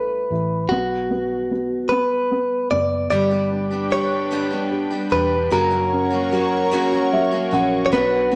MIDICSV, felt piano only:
0, 0, Header, 1, 2, 480
1, 0, Start_track
1, 0, Tempo, 802139
1, 422, Time_signature, 6, 3, 24, 8
1, 4999, End_track
2, 0, Start_track
2, 0, Title_t, "Felt piano"
2, 0, Program_c, 0, 0
2, 0, Control_c, 0, 64, 127
2, 0, Note_on_c, 0, 57, 54
2, 0, Note_on_c, 0, 64, 49
2, 0, Note_on_c, 0, 69, 47
2, 177, Note_off_c, 0, 64, 0
2, 186, Note_on_c, 0, 64, 48
2, 399, Note_off_c, 0, 57, 0
2, 411, Note_off_c, 0, 69, 0
2, 417, Note_off_c, 0, 64, 0
2, 426, Note_on_c, 0, 59, 62
2, 429, Control_c, 0, 64, 0
2, 546, Control_c, 0, 64, 127
2, 651, Note_off_c, 0, 59, 0
2, 660, Note_on_c, 0, 59, 51
2, 894, Note_off_c, 0, 59, 0
2, 903, Note_on_c, 0, 59, 48
2, 1134, Note_off_c, 0, 59, 0
2, 1143, Note_on_c, 0, 59, 49
2, 1375, Note_off_c, 0, 59, 0
2, 1384, Note_on_c, 0, 59, 48
2, 1614, Note_off_c, 0, 59, 0
2, 1623, Note_on_c, 0, 59, 50
2, 1856, Note_off_c, 0, 59, 0
2, 1862, Note_on_c, 0, 55, 63
2, 1872, Control_c, 0, 64, 0
2, 1995, Control_c, 0, 64, 127
2, 2103, Note_on_c, 0, 62, 53
2, 2344, Note_on_c, 0, 67, 47
2, 2576, Note_off_c, 0, 62, 0
2, 2585, Note_on_c, 0, 62, 52
2, 2811, Note_off_c, 0, 67, 0
2, 2820, Note_on_c, 0, 67, 51
2, 3055, Note_off_c, 0, 62, 0
2, 3064, Note_on_c, 0, 62, 52
2, 3278, Note_off_c, 0, 55, 0
2, 3286, Note_off_c, 0, 67, 0
2, 3296, Note_off_c, 0, 62, 0
2, 3297, Note_on_c, 0, 54, 64
2, 3309, Control_c, 0, 64, 0
2, 3404, Control_c, 0, 64, 127
2, 3545, Note_on_c, 0, 61, 50
2, 3772, Note_off_c, 0, 54, 0
2, 3781, Note_on_c, 0, 54, 55
2, 4014, Note_off_c, 0, 61, 0
2, 4023, Note_on_c, 0, 61, 57
2, 4255, Note_off_c, 0, 54, 0
2, 4264, Note_on_c, 0, 54, 54
2, 4265, Note_on_c, 0, 76, 65
2, 4486, Note_off_c, 0, 76, 0
2, 4491, Note_off_c, 0, 61, 0
2, 4500, Note_on_c, 0, 61, 51
2, 4502, Note_on_c, 0, 78, 68
2, 4723, Note_off_c, 0, 78, 0
2, 4727, Note_off_c, 0, 54, 0
2, 4732, Note_off_c, 0, 61, 0
2, 4743, Note_on_c, 0, 59, 66
2, 4748, Control_c, 0, 64, 0
2, 4858, Control_c, 0, 64, 127
2, 4969, Note_off_c, 0, 59, 0
2, 4978, Note_on_c, 0, 59, 51
2, 4999, Note_off_c, 0, 59, 0
2, 4999, End_track
0, 0, End_of_file